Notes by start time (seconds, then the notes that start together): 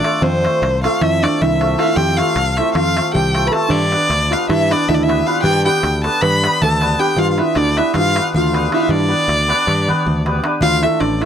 Already playing: D4 D5
0.03 A3 D4 F4 A4, darbuka tek
0.14 darbuka tek
0.21 F2 C4 C5, darbuka dum
0.33 darbuka tek
0.43 A3 C4 F4 A4, darbuka tek
0.62 C2, darbuka tek
0.73 darbuka tek
0.83 A3 C4 F4 A4 F5, darbuka tek
1.01 F2 E4 E5, darbuka tek, darbuka dum
1.13 darbuka tek
1.23 A3 C4 D4 F4 A4 D5, darbuka tek
1.42 C2 E4 E5, darbuka dum
1.52 darbuka tek
1.61 A3 C4 F4 A4, darbuka tek
1.70 darbuka tek
1.78 A3 C4 F4 A4 F5, darbuka tek
1.82 E4 E5
1.87 F4 F5
1.96 F2 G4 G5, darbuka dum
2.17 A3 C4 F4 A4 F5, darbuka tek
2.28 darbuka tek
2.36 C2, darbuka tek
2.47 darbuka tek
2.57 A3 C4 E4 F4 A4 E5, darbuka tek
2.75 F2 F4 F5, darbuka tek, darbuka dum
2.86 darbuka tek
2.96 A3 C4 F4 A4, darbuka tek
3.06 darbuka tek
3.14 C2 G4 G5, darbuka dum
3.34 A3 C4 F4 A4, darbuka tek
3.46 B4 B5
3.52 A3 C4 F4 A4 A5, darbuka tek
3.62 darbuka tek
3.69 G2 D4 D5, darbuka dum
3.82 darbuka tek
3.91 B3 D4 G4 B4, darbuka tek
4.10 D2, darbuka tek
4.31 B3 D4 F4 G4 B4 F5, darbuka tek
4.49 G2 E4 E5, darbuka tek, darbuka dum
4.70 B3 D4 G4 B4 D5, darbuka tek
4.89 D2 E4 E5, darbuka dum
4.95 D4 D5
5.00 E5, darbuka tek
5.06 B3 D4 E4 G4, darbuka tek
5.10 B4
5.18 darbuka tek
5.26 B3 D4 F4 G4 B4 F5
5.35 darbuka tek
5.43 G2 G4 G5, darbuka dum
5.55 darbuka tek
5.65 B3 D4 G4 B4 G5, darbuka tek
5.83 D2, darbuka tek
5.93 darbuka tek
6.04 B3 D4 G4 A4 B4 A5, darbuka tek
6.22 G2 B4 B5, darbuka tek, darbuka dum
6.43 B3 D4 G4 B4, darbuka tek
6.62 D2 A4 A5, darbuka dum
6.72 darbuka tek
6.81 B3 D4 G4 B4, darbuka tek
6.90 darbuka tek
6.98 B3 D4 G4 B4 G5
7.08 darbuka tek
7.16 G2 F4 F5, darbuka dum
7.31 F4 F5
7.37 B3 D4 E4 G4 B4 E5, darbuka tek
7.55 D2 D4 D5, darbuka tek
7.76 B3 D4 E4 G4 B4 E5, darbuka tek
7.94 G2 F5, darbuka tek, darbuka dum
7.98 F4
8.15 B3 D4 G4 B4, darbuka tek
8.34 D2 F4 F5, darbuka dum
8.44 darbuka tek
8.53 B3 D4 G4 B4, darbuka tek
8.63 darbuka tek
8.69 B3 D4 G4 B4, darbuka tek
8.74 E4 F4 E5 F5
8.81 E4 E5, darbuka tek
8.89 G2 D4 D5, darbuka dum
9.01 darbuka tek
9.08 B3 D4 G4 B4
9.20 darbuka tek
9.28 D2, darbuka tek
9.39 darbuka tek
9.48 B3 D4 G4 B4, darbuka tek
9.59 darbuka tek
9.67 G2, darbuka tek, darbuka dum
9.88 B3 D4 G4 B4, darbuka dum
10.06 D2, darbuka dum
10.26 B3 D4 G4 B4, darbuka tek
10.44 B3 D4 G4 B4, darbuka tek
10.61 D2 F4 F5, darbuka dum
10.72 darbuka tek
10.82 A3 D4 E4 F4 A4 E5, darbuka tek
11.00 A1 D4 D5, darbuka tek
11.12 darbuka tek
11.22 A3 E4 E5, darbuka tek